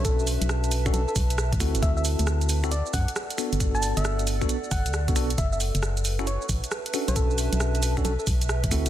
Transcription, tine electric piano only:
X:1
M:4/4
L:1/16
Q:"Swing 16ths" 1/4=135
K:Bm
V:1 name="Tine electric piano"
[CDFA]6- [CDFA] [CDFA] z6 [=CEFA]2- | [=CEFA]6- [CEFA] [CEFA] z6 [B,DFA]2- | [B,DFA]6- [B,DFA] [B,DFA] z4 z [B,DFA] [B,DFA] z | z6 z [CEFA] z6 [CDFA]2- |
[CDFA]6- [CDFA] [CDFA] z6 [=CEFA]2 |]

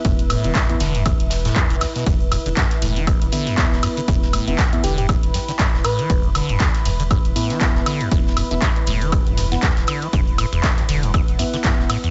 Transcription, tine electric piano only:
X:1
M:4/4
L:1/16
Q:"Swing 16ths" 1/4=119
K:Clyd
V:1 name="Tine electric piano"
[B,Ee]3 [B,Ee] z [B,Ee] z8 z2 | z8 z2 [B,Ee]6- | [B,Ee]3 [B,Ee] z [B,Ee] z8 z2 | z8 z2 [B,Ee]6- |
[B,Ee]3 [B,Ee] z6 z [B,Ef] z4 | z8 z2 [B,Ee]6 |]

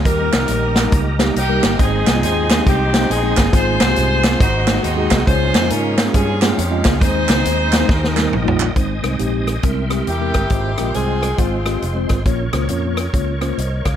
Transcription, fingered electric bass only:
X:1
M:4/4
L:1/8
Q:"Swing" 1/4=138
K:Ab
V:1 name="Fingered electric bass" clef=bass
E,, C,, B,,,2 D,,2 C,, G,,, | A,,, C,, E,,2 C,,2 B,,, G,,, | A,,, C,, C,,2 A,,,2 E,, C,, | D,, F,, A,,2 G,,2 F,, D,, |
E,, D,, E,,2 E,,2 B,,,2 | A,,, C,, B,,,2 C,,2 =E,, G,,, | A,,, B,,, C,,2 A,,,2 F,,, A,,, | B,,, D,, F,,2 D,,2 C,, D,, |]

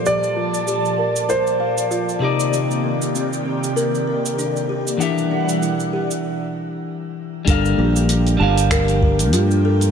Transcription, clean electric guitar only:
X:1
M:4/4
L:1/8
Q:"Swing 16ths" 1/4=97
K:Gdor
V:1 name="Clean electric guitar"
[G,B,Dfa]6- [G,B,Dfa] [C,C_EBd]- | [C,C_EBd]8 | [E,DGe^f]8 | [G,DABf]3 [G,DBfa]4- [G,DBfa] |]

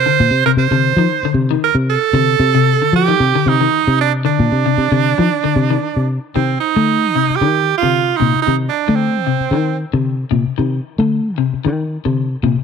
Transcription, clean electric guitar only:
X:1
M:4/4
L:1/16
Q:"Swing 16ths" 1/4=114
K:Cdor
V:1 name="Clean electric guitar" clef=bass
D,2 z C,2 D,2 E,2 D,2 E,2 z3 | D,2 z C,2 D,2 E,2 D,2 E,2 z3 | D,2 z C,2 D,2 E,2 D,2 E,2 z3 | E,2 z D,2 z C,2 E,2 z D,2 z C,2 |
E,2 z D,2 z C,2 E,2 z D,2 z C,2 | E,2 z D,2 z C,2 E,2 z D,2 z C,2 |]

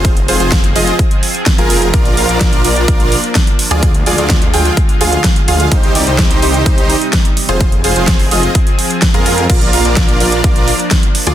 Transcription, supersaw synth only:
X:1
M:4/4
L:1/16
Q:1/4=127
K:Fdor
V:1 name="Supersaw synth"
[FAc] z [FAc] [FAc]2 z [FAe]2 z4 z [FAB]3 | [FBd]2 [FBf] [FBd]3 [FBd]2 [FBd]3 z4 [FAd]- | [FAd] z [FAd] [FAd]2 z [FAg]2 z2 [FAf]2 z2 [FAf]2 | [EGc]2 [EGd] [EGc]3 [EGc]2 [EGc]3 z4 [FAc]- |
[FAc] z [FAc] [FAc]2 z [FAe]2 z4 z [FAB]3 | [FBd]2 [FBf] [FBd]3 [FBd]2 [FBd]3 z4 [FAd] |]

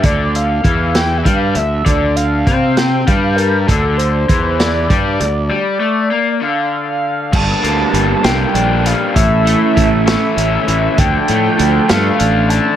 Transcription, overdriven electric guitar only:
X:1
M:6/8
L:1/8
Q:3/8=66
K:Dm
V:1 name="Overdriven electric guitar" clef=bass
D,2 E,2 G, D, | D,2 C2 G,2 | D,2 E,2 G, D, | G, A, B, D,3 |
G,, B, G, B, D G, | A,, A, E, A, ^C E, | D, A, D, A, D D, |]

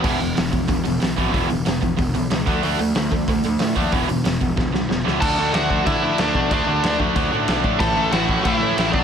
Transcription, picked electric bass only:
X:1
M:4/4
L:1/8
Q:1/4=186
K:Dlyd
V:1 name="Picked electric bass" clef=bass
E,,, E,,, E,,, E,,, E,,, E,,, B,,, G,,, | E,,, E,,, E,,, E,,, E,,, B,,, C,, D,, | D,, D,, D,, D,, D,, D,, A,, ^D,, | E,,, E,,, E,,, E,,, E,,, B,,, E,,, C,, |
D,, D,, D,,2 D,2 D,, B,, | D,, D,, D,, D,, D,, A,, B,,, A,, | A,,, A,,, A,,,2 A,,2 A,,, B,,, |]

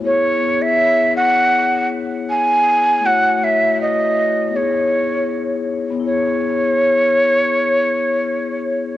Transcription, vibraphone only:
X:1
M:4/4
L:1/8
Q:"Swing 16ths" 1/4=80
K:C#m
V:1 name="Vibraphone"
[B,EGc] [B,EGc]3 z4 | [A,EFc] [A,EFc]3 [B,DEGc]3 z | [B,EGc]8 |]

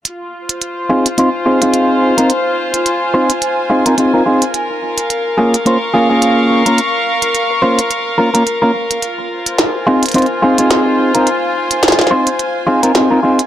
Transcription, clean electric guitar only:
X:1
M:4/4
L:1/16
Q:"Swing 16ths" 1/4=107
K:Fm
V:1 name="Clean electric guitar"
z6 [CEFA] z [CEFc] z [CEFA] [CEFA]4 [CEFB] | z6 [CEFc] z3 [CEFA] [CEFB] [CEFA] [CEFB] [CEFA] z | z6 [B,DFA] z [B,DFc] z [B,DFA] [B,DFA]4 [B,DFB] | z6 [B,DFc] z3 [B,DFB] [B,DFB] z [B,DFB] z2 |
z6 [CEFA] z [CEFc] z [CEFA] [CEFA]4 [CEFB] | z6 [CEFc] z3 [CEFA] [CEFB] [CEFA] [CEFB] [CEFA] z |]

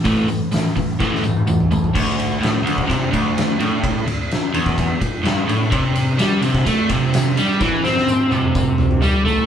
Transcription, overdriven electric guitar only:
X:1
M:4/4
L:1/8
Q:1/4=127
K:Clyd
V:1 name="Overdriven electric guitar" clef=bass
[A,,E,A,] [A,,E,] [A,,E,] [A,,E,] [A,,E,A,] [A,,E,] [A,,E,] [A,,E,] | D,,2 A,, D,, C, D,,2 A,,- | A,, D,, z E,,2 z G,, A,, | C,2 G, C, A, C,2 G, |
E, C2 C,3 G, A, |]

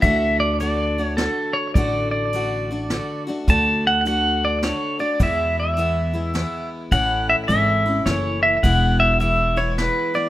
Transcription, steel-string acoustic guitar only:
X:1
M:3/4
L:1/8
Q:"Swing" 1/4=105
K:Dlyd
V:1 name="Steel-string acoustic guitar"
[D,A,DF]2 [D,A,DF] [A,DF] [D,A,DF]2 | [D,A,DF]2 [D,A,DF] [A,DF] [D,A,DF] [A,DF] | [D,A,DF]2 [D,A,DF]2 [D,A,DF] [A,DF] | [E,,B,,E,G,B,E]2 [E,G,B,E] [E,G,B,E] [E,G,B,E]2 |
[A,,E,A,CE]2 [E,A,CE] [A,CE] [E,A,CE]2 | [E,,B,,E,G,B,E]2 [E,G,B,E] [E,G,B,E] [E,G,B,E] [E,G,B,E] |]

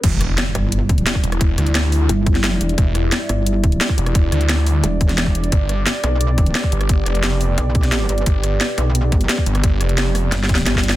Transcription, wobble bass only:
X:1
M:4/4
L:1/8
Q:1/4=175
K:Ephr
V:1 name="Wobble bass" clef=bass
z3 G,,,3 z2 | z4 G,,,3 E,,, | z3 G,,,3 z2 | z4 E,,,4 |
z3 B,,,3 z2 | z4 B,,,3 G,,, | z3 B,,,3 z2 | z4 G,,,2 G,,,2 |]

